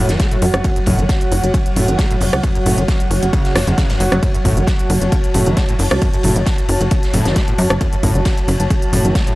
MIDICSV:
0, 0, Header, 1, 6, 480
1, 0, Start_track
1, 0, Key_signature, 3, "minor"
1, 0, Tempo, 447761
1, 693, Time_signature, 4, 2, 24, 8
1, 10024, End_track
2, 0, Start_track
2, 0, Title_t, "Analog synth pad"
2, 0, Program_c, 0, 89
2, 0, Note_on_c, 0, 66, 80
2, 0, Note_on_c, 0, 73, 73
2, 0, Note_on_c, 0, 78, 81
2, 5079, Note_on_c, 0, 81, 81
2, 5104, Note_off_c, 0, 78, 0
2, 10024, Note_off_c, 0, 66, 0
2, 10024, Note_off_c, 0, 73, 0
2, 10024, Note_off_c, 0, 81, 0
2, 10024, End_track
3, 0, Start_track
3, 0, Title_t, "Synth drone"
3, 0, Program_c, 1, 95
3, 0, Note_on_c, 1, 54, 79
3, 10024, Note_off_c, 1, 54, 0
3, 10024, End_track
4, 0, Start_track
4, 0, Title_t, "Acid bass"
4, 0, Program_c, 2, 38
4, 0, Note_on_c, 2, 45, 100
4, 96, Note_on_c, 2, 52, 101
4, 112, Note_off_c, 2, 45, 0
4, 210, Note_on_c, 2, 57, 83
4, 226, Note_off_c, 2, 52, 0
4, 281, Note_off_c, 2, 57, 0
4, 336, Note_on_c, 2, 45, 76
4, 400, Note_off_c, 2, 45, 0
4, 450, Note_on_c, 2, 42, 74
4, 493, Note_off_c, 2, 42, 0
4, 690, Note_on_c, 2, 42, 84
4, 761, Note_off_c, 2, 42, 0
4, 816, Note_on_c, 2, 42, 75
4, 855, Note_off_c, 2, 42, 0
4, 929, Note_on_c, 2, 45, 95
4, 1058, Note_on_c, 2, 52, 109
4, 1075, Note_off_c, 2, 45, 0
4, 1121, Note_off_c, 2, 52, 0
4, 1651, Note_on_c, 2, 49, 79
4, 1693, Note_off_c, 2, 49, 0
4, 1892, Note_on_c, 2, 45, 96
4, 2017, Note_on_c, 2, 52, 98
4, 2033, Note_off_c, 2, 45, 0
4, 2132, Note_on_c, 2, 57, 87
4, 2148, Note_off_c, 2, 52, 0
4, 2202, Note_off_c, 2, 57, 0
4, 2258, Note_on_c, 2, 45, 75
4, 2321, Note_off_c, 2, 45, 0
4, 2373, Note_on_c, 2, 42, 74
4, 2414, Note_off_c, 2, 42, 0
4, 2613, Note_on_c, 2, 42, 79
4, 2682, Note_off_c, 2, 42, 0
4, 2738, Note_on_c, 2, 42, 76
4, 2776, Note_off_c, 2, 42, 0
4, 2852, Note_on_c, 2, 45, 94
4, 2977, Note_on_c, 2, 52, 102
4, 2993, Note_off_c, 2, 45, 0
4, 3040, Note_off_c, 2, 52, 0
4, 3570, Note_on_c, 2, 49, 83
4, 3810, Note_on_c, 2, 54, 72
4, 3826, Note_off_c, 2, 49, 0
4, 3881, Note_off_c, 2, 54, 0
4, 3935, Note_on_c, 2, 40, 77
4, 4031, Note_off_c, 2, 40, 0
4, 4048, Note_on_c, 2, 49, 108
4, 4175, Note_on_c, 2, 42, 95
4, 4191, Note_off_c, 2, 49, 0
4, 4270, Note_off_c, 2, 42, 0
4, 4286, Note_on_c, 2, 54, 74
4, 4331, Note_off_c, 2, 54, 0
4, 4412, Note_on_c, 2, 54, 70
4, 4478, Note_off_c, 2, 54, 0
4, 4527, Note_on_c, 2, 42, 80
4, 4599, Note_off_c, 2, 42, 0
4, 4654, Note_on_c, 2, 42, 79
4, 4694, Note_off_c, 2, 42, 0
4, 4769, Note_on_c, 2, 45, 94
4, 4894, Note_on_c, 2, 52, 105
4, 4910, Note_off_c, 2, 45, 0
4, 4959, Note_off_c, 2, 52, 0
4, 5488, Note_on_c, 2, 49, 83
4, 5532, Note_off_c, 2, 49, 0
4, 5730, Note_on_c, 2, 45, 97
4, 5857, Note_on_c, 2, 52, 104
4, 5873, Note_off_c, 2, 45, 0
4, 5970, Note_on_c, 2, 57, 82
4, 5986, Note_off_c, 2, 52, 0
4, 6041, Note_off_c, 2, 57, 0
4, 6098, Note_on_c, 2, 45, 74
4, 6161, Note_off_c, 2, 45, 0
4, 6211, Note_on_c, 2, 42, 73
4, 6254, Note_off_c, 2, 42, 0
4, 6452, Note_on_c, 2, 42, 80
4, 6522, Note_off_c, 2, 42, 0
4, 6578, Note_on_c, 2, 42, 77
4, 6616, Note_off_c, 2, 42, 0
4, 6692, Note_on_c, 2, 45, 100
4, 6819, Note_on_c, 2, 52, 108
4, 6835, Note_off_c, 2, 45, 0
4, 6881, Note_off_c, 2, 52, 0
4, 7412, Note_on_c, 2, 49, 80
4, 7454, Note_off_c, 2, 49, 0
4, 7653, Note_on_c, 2, 45, 99
4, 7778, Note_on_c, 2, 52, 102
4, 7794, Note_off_c, 2, 45, 0
4, 7892, Note_on_c, 2, 57, 89
4, 7908, Note_off_c, 2, 52, 0
4, 7962, Note_off_c, 2, 57, 0
4, 8018, Note_on_c, 2, 45, 74
4, 8081, Note_off_c, 2, 45, 0
4, 8131, Note_on_c, 2, 42, 73
4, 8173, Note_off_c, 2, 42, 0
4, 8370, Note_on_c, 2, 42, 86
4, 8441, Note_off_c, 2, 42, 0
4, 8495, Note_on_c, 2, 42, 80
4, 8534, Note_off_c, 2, 42, 0
4, 8609, Note_on_c, 2, 45, 97
4, 8734, Note_on_c, 2, 52, 99
4, 8750, Note_off_c, 2, 45, 0
4, 8799, Note_off_c, 2, 52, 0
4, 9329, Note_on_c, 2, 49, 78
4, 9372, Note_off_c, 2, 49, 0
4, 9567, Note_on_c, 2, 45, 99
4, 9695, Note_on_c, 2, 52, 99
4, 9711, Note_off_c, 2, 45, 0
4, 9810, Note_on_c, 2, 57, 82
4, 9826, Note_off_c, 2, 52, 0
4, 9881, Note_off_c, 2, 57, 0
4, 9936, Note_on_c, 2, 45, 78
4, 10000, Note_off_c, 2, 45, 0
4, 10024, End_track
5, 0, Start_track
5, 0, Title_t, "Analog synth bass"
5, 0, Program_c, 3, 38
5, 96, Note_on_c, 3, 30, 85
5, 190, Note_off_c, 3, 30, 0
5, 452, Note_on_c, 3, 42, 95
5, 555, Note_off_c, 3, 42, 0
5, 577, Note_on_c, 3, 30, 84
5, 671, Note_off_c, 3, 30, 0
5, 932, Note_on_c, 3, 30, 99
5, 1035, Note_off_c, 3, 30, 0
5, 1058, Note_on_c, 3, 30, 81
5, 1151, Note_off_c, 3, 30, 0
5, 1411, Note_on_c, 3, 30, 97
5, 1515, Note_off_c, 3, 30, 0
5, 1537, Note_on_c, 3, 30, 77
5, 1631, Note_off_c, 3, 30, 0
5, 1891, Note_on_c, 3, 30, 87
5, 1995, Note_off_c, 3, 30, 0
5, 2017, Note_on_c, 3, 30, 86
5, 2111, Note_off_c, 3, 30, 0
5, 2370, Note_on_c, 3, 30, 96
5, 2474, Note_off_c, 3, 30, 0
5, 2498, Note_on_c, 3, 37, 85
5, 2591, Note_off_c, 3, 37, 0
5, 2850, Note_on_c, 3, 30, 97
5, 2955, Note_off_c, 3, 30, 0
5, 2978, Note_on_c, 3, 30, 79
5, 3071, Note_off_c, 3, 30, 0
5, 3330, Note_on_c, 3, 30, 93
5, 3434, Note_off_c, 3, 30, 0
5, 3458, Note_on_c, 3, 30, 74
5, 3551, Note_off_c, 3, 30, 0
5, 3810, Note_on_c, 3, 30, 88
5, 3914, Note_off_c, 3, 30, 0
5, 3936, Note_on_c, 3, 30, 83
5, 4030, Note_off_c, 3, 30, 0
5, 4290, Note_on_c, 3, 30, 95
5, 4394, Note_off_c, 3, 30, 0
5, 4415, Note_on_c, 3, 30, 83
5, 4510, Note_off_c, 3, 30, 0
5, 4770, Note_on_c, 3, 30, 97
5, 4874, Note_off_c, 3, 30, 0
5, 4896, Note_on_c, 3, 30, 78
5, 4990, Note_off_c, 3, 30, 0
5, 5249, Note_on_c, 3, 30, 95
5, 5354, Note_off_c, 3, 30, 0
5, 5376, Note_on_c, 3, 30, 78
5, 5470, Note_off_c, 3, 30, 0
5, 5730, Note_on_c, 3, 30, 87
5, 5834, Note_off_c, 3, 30, 0
5, 5857, Note_on_c, 3, 30, 86
5, 5950, Note_off_c, 3, 30, 0
5, 6210, Note_on_c, 3, 30, 95
5, 6314, Note_off_c, 3, 30, 0
5, 6337, Note_on_c, 3, 37, 84
5, 6430, Note_off_c, 3, 37, 0
5, 6690, Note_on_c, 3, 30, 96
5, 6794, Note_off_c, 3, 30, 0
5, 6816, Note_on_c, 3, 30, 85
5, 6910, Note_off_c, 3, 30, 0
5, 7170, Note_on_c, 3, 30, 96
5, 7274, Note_off_c, 3, 30, 0
5, 7296, Note_on_c, 3, 30, 81
5, 7390, Note_off_c, 3, 30, 0
5, 7650, Note_on_c, 3, 30, 93
5, 7754, Note_off_c, 3, 30, 0
5, 7778, Note_on_c, 3, 30, 82
5, 7871, Note_off_c, 3, 30, 0
5, 8130, Note_on_c, 3, 42, 96
5, 8235, Note_off_c, 3, 42, 0
5, 8256, Note_on_c, 3, 30, 82
5, 8350, Note_off_c, 3, 30, 0
5, 8611, Note_on_c, 3, 30, 94
5, 8715, Note_off_c, 3, 30, 0
5, 8736, Note_on_c, 3, 30, 80
5, 8830, Note_off_c, 3, 30, 0
5, 9090, Note_on_c, 3, 30, 94
5, 9194, Note_off_c, 3, 30, 0
5, 9217, Note_on_c, 3, 30, 78
5, 9310, Note_off_c, 3, 30, 0
5, 9571, Note_on_c, 3, 30, 92
5, 9675, Note_off_c, 3, 30, 0
5, 9698, Note_on_c, 3, 30, 85
5, 9791, Note_off_c, 3, 30, 0
5, 10024, End_track
6, 0, Start_track
6, 0, Title_t, "Drums"
6, 95, Note_on_c, 9, 38, 45
6, 97, Note_on_c, 9, 42, 54
6, 202, Note_off_c, 9, 38, 0
6, 204, Note_off_c, 9, 42, 0
6, 211, Note_on_c, 9, 42, 77
6, 211, Note_on_c, 9, 51, 92
6, 212, Note_on_c, 9, 36, 122
6, 215, Note_on_c, 9, 38, 121
6, 318, Note_off_c, 9, 42, 0
6, 318, Note_off_c, 9, 51, 0
6, 319, Note_off_c, 9, 36, 0
6, 322, Note_off_c, 9, 38, 0
6, 337, Note_on_c, 9, 42, 53
6, 445, Note_off_c, 9, 42, 0
6, 449, Note_on_c, 9, 46, 96
6, 450, Note_on_c, 9, 51, 65
6, 556, Note_off_c, 9, 46, 0
6, 557, Note_off_c, 9, 51, 0
6, 577, Note_on_c, 9, 37, 91
6, 577, Note_on_c, 9, 42, 52
6, 684, Note_off_c, 9, 37, 0
6, 684, Note_off_c, 9, 42, 0
6, 690, Note_on_c, 9, 42, 78
6, 691, Note_on_c, 9, 36, 124
6, 694, Note_on_c, 9, 51, 89
6, 797, Note_off_c, 9, 42, 0
6, 799, Note_off_c, 9, 36, 0
6, 801, Note_off_c, 9, 51, 0
6, 817, Note_on_c, 9, 42, 56
6, 922, Note_on_c, 9, 51, 72
6, 925, Note_off_c, 9, 42, 0
6, 930, Note_on_c, 9, 46, 115
6, 932, Note_on_c, 9, 36, 61
6, 1029, Note_off_c, 9, 51, 0
6, 1037, Note_off_c, 9, 46, 0
6, 1039, Note_off_c, 9, 36, 0
6, 1058, Note_on_c, 9, 42, 52
6, 1165, Note_off_c, 9, 42, 0
6, 1169, Note_on_c, 9, 38, 116
6, 1171, Note_on_c, 9, 36, 127
6, 1171, Note_on_c, 9, 42, 82
6, 1177, Note_on_c, 9, 51, 98
6, 1276, Note_off_c, 9, 38, 0
6, 1278, Note_off_c, 9, 42, 0
6, 1279, Note_off_c, 9, 36, 0
6, 1284, Note_off_c, 9, 51, 0
6, 1298, Note_on_c, 9, 42, 54
6, 1405, Note_off_c, 9, 42, 0
6, 1411, Note_on_c, 9, 46, 94
6, 1414, Note_on_c, 9, 51, 69
6, 1518, Note_off_c, 9, 46, 0
6, 1521, Note_off_c, 9, 51, 0
6, 1539, Note_on_c, 9, 42, 51
6, 1646, Note_off_c, 9, 42, 0
6, 1650, Note_on_c, 9, 51, 92
6, 1651, Note_on_c, 9, 36, 120
6, 1651, Note_on_c, 9, 42, 82
6, 1757, Note_off_c, 9, 51, 0
6, 1759, Note_off_c, 9, 36, 0
6, 1759, Note_off_c, 9, 42, 0
6, 1778, Note_on_c, 9, 42, 55
6, 1886, Note_off_c, 9, 42, 0
6, 1887, Note_on_c, 9, 51, 67
6, 1892, Note_on_c, 9, 46, 117
6, 1995, Note_off_c, 9, 51, 0
6, 1999, Note_off_c, 9, 46, 0
6, 2018, Note_on_c, 9, 42, 53
6, 2125, Note_off_c, 9, 42, 0
6, 2127, Note_on_c, 9, 38, 124
6, 2128, Note_on_c, 9, 51, 96
6, 2131, Note_on_c, 9, 36, 126
6, 2131, Note_on_c, 9, 42, 79
6, 2234, Note_off_c, 9, 38, 0
6, 2235, Note_off_c, 9, 51, 0
6, 2239, Note_off_c, 9, 36, 0
6, 2239, Note_off_c, 9, 42, 0
6, 2257, Note_on_c, 9, 51, 40
6, 2258, Note_on_c, 9, 42, 49
6, 2362, Note_on_c, 9, 46, 81
6, 2364, Note_off_c, 9, 51, 0
6, 2366, Note_off_c, 9, 42, 0
6, 2372, Note_off_c, 9, 46, 0
6, 2372, Note_on_c, 9, 46, 94
6, 2479, Note_off_c, 9, 46, 0
6, 2499, Note_on_c, 9, 37, 89
6, 2499, Note_on_c, 9, 42, 54
6, 2606, Note_off_c, 9, 37, 0
6, 2606, Note_off_c, 9, 42, 0
6, 2607, Note_on_c, 9, 51, 88
6, 2611, Note_on_c, 9, 36, 121
6, 2611, Note_on_c, 9, 42, 73
6, 2714, Note_off_c, 9, 51, 0
6, 2719, Note_off_c, 9, 36, 0
6, 2719, Note_off_c, 9, 42, 0
6, 2738, Note_on_c, 9, 42, 53
6, 2845, Note_off_c, 9, 42, 0
6, 2851, Note_on_c, 9, 46, 118
6, 2852, Note_on_c, 9, 51, 65
6, 2958, Note_off_c, 9, 46, 0
6, 2959, Note_off_c, 9, 51, 0
6, 2978, Note_on_c, 9, 42, 49
6, 3086, Note_off_c, 9, 42, 0
6, 3089, Note_on_c, 9, 51, 96
6, 3091, Note_on_c, 9, 36, 127
6, 3091, Note_on_c, 9, 42, 75
6, 3093, Note_on_c, 9, 38, 121
6, 3196, Note_off_c, 9, 51, 0
6, 3198, Note_off_c, 9, 42, 0
6, 3199, Note_off_c, 9, 36, 0
6, 3200, Note_off_c, 9, 38, 0
6, 3217, Note_on_c, 9, 42, 52
6, 3325, Note_off_c, 9, 42, 0
6, 3328, Note_on_c, 9, 51, 64
6, 3332, Note_on_c, 9, 46, 94
6, 3435, Note_off_c, 9, 51, 0
6, 3439, Note_off_c, 9, 46, 0
6, 3456, Note_on_c, 9, 51, 38
6, 3458, Note_on_c, 9, 42, 48
6, 3563, Note_off_c, 9, 51, 0
6, 3566, Note_off_c, 9, 42, 0
6, 3571, Note_on_c, 9, 36, 119
6, 3572, Note_on_c, 9, 42, 77
6, 3573, Note_on_c, 9, 51, 88
6, 3679, Note_off_c, 9, 36, 0
6, 3679, Note_off_c, 9, 42, 0
6, 3680, Note_off_c, 9, 51, 0
6, 3694, Note_on_c, 9, 38, 46
6, 3699, Note_on_c, 9, 42, 50
6, 3802, Note_off_c, 9, 38, 0
6, 3806, Note_off_c, 9, 42, 0
6, 3809, Note_on_c, 9, 51, 75
6, 3811, Note_on_c, 9, 37, 90
6, 3811, Note_on_c, 9, 38, 98
6, 3811, Note_on_c, 9, 46, 113
6, 3916, Note_off_c, 9, 51, 0
6, 3918, Note_off_c, 9, 37, 0
6, 3918, Note_off_c, 9, 46, 0
6, 3919, Note_off_c, 9, 38, 0
6, 3937, Note_on_c, 9, 42, 48
6, 4045, Note_off_c, 9, 42, 0
6, 4050, Note_on_c, 9, 38, 103
6, 4051, Note_on_c, 9, 36, 120
6, 4051, Note_on_c, 9, 42, 75
6, 4056, Note_on_c, 9, 51, 79
6, 4157, Note_off_c, 9, 38, 0
6, 4158, Note_off_c, 9, 36, 0
6, 4158, Note_off_c, 9, 42, 0
6, 4163, Note_off_c, 9, 51, 0
6, 4178, Note_on_c, 9, 38, 98
6, 4178, Note_on_c, 9, 42, 50
6, 4179, Note_on_c, 9, 51, 81
6, 4285, Note_off_c, 9, 38, 0
6, 4285, Note_off_c, 9, 42, 0
6, 4286, Note_off_c, 9, 51, 0
6, 4291, Note_on_c, 9, 46, 94
6, 4295, Note_on_c, 9, 51, 66
6, 4398, Note_off_c, 9, 46, 0
6, 4402, Note_off_c, 9, 51, 0
6, 4417, Note_on_c, 9, 37, 92
6, 4417, Note_on_c, 9, 42, 54
6, 4524, Note_off_c, 9, 37, 0
6, 4524, Note_off_c, 9, 42, 0
6, 4530, Note_on_c, 9, 51, 93
6, 4531, Note_on_c, 9, 36, 119
6, 4531, Note_on_c, 9, 42, 71
6, 4637, Note_off_c, 9, 51, 0
6, 4638, Note_off_c, 9, 36, 0
6, 4638, Note_off_c, 9, 42, 0
6, 4658, Note_on_c, 9, 42, 52
6, 4765, Note_off_c, 9, 42, 0
6, 4771, Note_on_c, 9, 36, 58
6, 4771, Note_on_c, 9, 46, 108
6, 4771, Note_on_c, 9, 51, 71
6, 4878, Note_off_c, 9, 36, 0
6, 4878, Note_off_c, 9, 51, 0
6, 4879, Note_off_c, 9, 46, 0
6, 4898, Note_on_c, 9, 42, 50
6, 5005, Note_off_c, 9, 42, 0
6, 5005, Note_on_c, 9, 38, 120
6, 5011, Note_on_c, 9, 36, 123
6, 5012, Note_on_c, 9, 42, 76
6, 5017, Note_on_c, 9, 51, 88
6, 5112, Note_off_c, 9, 38, 0
6, 5118, Note_off_c, 9, 36, 0
6, 5119, Note_off_c, 9, 42, 0
6, 5125, Note_off_c, 9, 51, 0
6, 5138, Note_on_c, 9, 42, 48
6, 5245, Note_off_c, 9, 42, 0
6, 5249, Note_on_c, 9, 51, 71
6, 5251, Note_on_c, 9, 46, 90
6, 5356, Note_off_c, 9, 51, 0
6, 5358, Note_off_c, 9, 46, 0
6, 5377, Note_on_c, 9, 42, 49
6, 5484, Note_off_c, 9, 42, 0
6, 5487, Note_on_c, 9, 51, 98
6, 5491, Note_on_c, 9, 36, 117
6, 5491, Note_on_c, 9, 42, 72
6, 5594, Note_off_c, 9, 51, 0
6, 5598, Note_off_c, 9, 36, 0
6, 5598, Note_off_c, 9, 42, 0
6, 5617, Note_on_c, 9, 42, 47
6, 5724, Note_off_c, 9, 42, 0
6, 5725, Note_on_c, 9, 51, 69
6, 5730, Note_on_c, 9, 46, 110
6, 5832, Note_off_c, 9, 51, 0
6, 5837, Note_off_c, 9, 46, 0
6, 5857, Note_on_c, 9, 42, 49
6, 5964, Note_off_c, 9, 42, 0
6, 5969, Note_on_c, 9, 38, 109
6, 5969, Note_on_c, 9, 51, 93
6, 5970, Note_on_c, 9, 42, 70
6, 5971, Note_on_c, 9, 36, 111
6, 6076, Note_off_c, 9, 38, 0
6, 6077, Note_off_c, 9, 42, 0
6, 6077, Note_off_c, 9, 51, 0
6, 6078, Note_off_c, 9, 36, 0
6, 6092, Note_on_c, 9, 51, 44
6, 6096, Note_on_c, 9, 42, 51
6, 6199, Note_off_c, 9, 51, 0
6, 6203, Note_on_c, 9, 46, 85
6, 6204, Note_off_c, 9, 42, 0
6, 6210, Note_off_c, 9, 46, 0
6, 6210, Note_on_c, 9, 46, 92
6, 6318, Note_off_c, 9, 46, 0
6, 6337, Note_on_c, 9, 37, 96
6, 6337, Note_on_c, 9, 42, 50
6, 6444, Note_off_c, 9, 37, 0
6, 6444, Note_off_c, 9, 42, 0
6, 6449, Note_on_c, 9, 51, 88
6, 6450, Note_on_c, 9, 42, 72
6, 6451, Note_on_c, 9, 36, 121
6, 6556, Note_off_c, 9, 51, 0
6, 6557, Note_off_c, 9, 42, 0
6, 6558, Note_off_c, 9, 36, 0
6, 6577, Note_on_c, 9, 42, 52
6, 6680, Note_on_c, 9, 51, 62
6, 6684, Note_off_c, 9, 42, 0
6, 6690, Note_on_c, 9, 46, 108
6, 6787, Note_off_c, 9, 51, 0
6, 6797, Note_off_c, 9, 46, 0
6, 6817, Note_on_c, 9, 42, 51
6, 6922, Note_on_c, 9, 38, 127
6, 6924, Note_off_c, 9, 42, 0
6, 6931, Note_on_c, 9, 36, 121
6, 6931, Note_on_c, 9, 42, 76
6, 6936, Note_on_c, 9, 51, 98
6, 7029, Note_off_c, 9, 38, 0
6, 7038, Note_off_c, 9, 36, 0
6, 7038, Note_off_c, 9, 42, 0
6, 7044, Note_off_c, 9, 51, 0
6, 7058, Note_on_c, 9, 42, 48
6, 7165, Note_off_c, 9, 42, 0
6, 7165, Note_on_c, 9, 51, 70
6, 7170, Note_on_c, 9, 46, 92
6, 7273, Note_off_c, 9, 51, 0
6, 7277, Note_off_c, 9, 46, 0
6, 7297, Note_on_c, 9, 42, 46
6, 7301, Note_on_c, 9, 51, 43
6, 7404, Note_off_c, 9, 42, 0
6, 7406, Note_off_c, 9, 51, 0
6, 7406, Note_on_c, 9, 51, 84
6, 7410, Note_on_c, 9, 42, 76
6, 7411, Note_on_c, 9, 36, 117
6, 7513, Note_off_c, 9, 51, 0
6, 7517, Note_off_c, 9, 42, 0
6, 7519, Note_off_c, 9, 36, 0
6, 7536, Note_on_c, 9, 42, 49
6, 7539, Note_on_c, 9, 38, 44
6, 7643, Note_off_c, 9, 42, 0
6, 7646, Note_off_c, 9, 38, 0
6, 7649, Note_on_c, 9, 46, 105
6, 7650, Note_on_c, 9, 51, 73
6, 7757, Note_off_c, 9, 46, 0
6, 7757, Note_off_c, 9, 51, 0
6, 7777, Note_on_c, 9, 42, 48
6, 7782, Note_on_c, 9, 38, 53
6, 7884, Note_off_c, 9, 42, 0
6, 7889, Note_off_c, 9, 38, 0
6, 7890, Note_on_c, 9, 42, 74
6, 7890, Note_on_c, 9, 51, 93
6, 7891, Note_on_c, 9, 36, 113
6, 7893, Note_on_c, 9, 38, 127
6, 7997, Note_off_c, 9, 42, 0
6, 7997, Note_off_c, 9, 51, 0
6, 7998, Note_off_c, 9, 36, 0
6, 8001, Note_off_c, 9, 38, 0
6, 8017, Note_on_c, 9, 42, 49
6, 8124, Note_off_c, 9, 42, 0
6, 8130, Note_on_c, 9, 46, 92
6, 8130, Note_on_c, 9, 51, 72
6, 8237, Note_off_c, 9, 46, 0
6, 8237, Note_off_c, 9, 51, 0
6, 8257, Note_on_c, 9, 37, 98
6, 8257, Note_on_c, 9, 42, 51
6, 8364, Note_off_c, 9, 37, 0
6, 8364, Note_off_c, 9, 42, 0
6, 8371, Note_on_c, 9, 36, 106
6, 8371, Note_on_c, 9, 42, 77
6, 8374, Note_on_c, 9, 51, 83
6, 8478, Note_off_c, 9, 36, 0
6, 8478, Note_off_c, 9, 42, 0
6, 8481, Note_off_c, 9, 51, 0
6, 8497, Note_on_c, 9, 42, 54
6, 8605, Note_off_c, 9, 42, 0
6, 8609, Note_on_c, 9, 51, 63
6, 8611, Note_on_c, 9, 36, 55
6, 8611, Note_on_c, 9, 46, 105
6, 8716, Note_off_c, 9, 51, 0
6, 8718, Note_off_c, 9, 46, 0
6, 8719, Note_off_c, 9, 36, 0
6, 8738, Note_on_c, 9, 42, 49
6, 8845, Note_off_c, 9, 42, 0
6, 8845, Note_on_c, 9, 51, 93
6, 8850, Note_on_c, 9, 38, 124
6, 8851, Note_on_c, 9, 36, 116
6, 8851, Note_on_c, 9, 42, 76
6, 8952, Note_off_c, 9, 51, 0
6, 8957, Note_off_c, 9, 38, 0
6, 8958, Note_off_c, 9, 36, 0
6, 8959, Note_off_c, 9, 42, 0
6, 8979, Note_on_c, 9, 42, 52
6, 9086, Note_off_c, 9, 42, 0
6, 9091, Note_on_c, 9, 46, 86
6, 9095, Note_on_c, 9, 51, 69
6, 9198, Note_off_c, 9, 46, 0
6, 9202, Note_off_c, 9, 51, 0
6, 9217, Note_on_c, 9, 42, 51
6, 9325, Note_off_c, 9, 42, 0
6, 9330, Note_on_c, 9, 51, 90
6, 9331, Note_on_c, 9, 36, 110
6, 9331, Note_on_c, 9, 42, 74
6, 9437, Note_off_c, 9, 51, 0
6, 9438, Note_off_c, 9, 42, 0
6, 9439, Note_off_c, 9, 36, 0
6, 9458, Note_on_c, 9, 42, 47
6, 9566, Note_off_c, 9, 42, 0
6, 9572, Note_on_c, 9, 46, 106
6, 9576, Note_on_c, 9, 51, 62
6, 9679, Note_off_c, 9, 46, 0
6, 9683, Note_off_c, 9, 51, 0
6, 9699, Note_on_c, 9, 42, 48
6, 9807, Note_off_c, 9, 42, 0
6, 9811, Note_on_c, 9, 36, 117
6, 9811, Note_on_c, 9, 42, 76
6, 9814, Note_on_c, 9, 51, 87
6, 9820, Note_on_c, 9, 38, 123
6, 9919, Note_off_c, 9, 36, 0
6, 9919, Note_off_c, 9, 42, 0
6, 9921, Note_off_c, 9, 51, 0
6, 9928, Note_off_c, 9, 38, 0
6, 9938, Note_on_c, 9, 42, 47
6, 9938, Note_on_c, 9, 51, 41
6, 10024, Note_off_c, 9, 42, 0
6, 10024, Note_off_c, 9, 51, 0
6, 10024, End_track
0, 0, End_of_file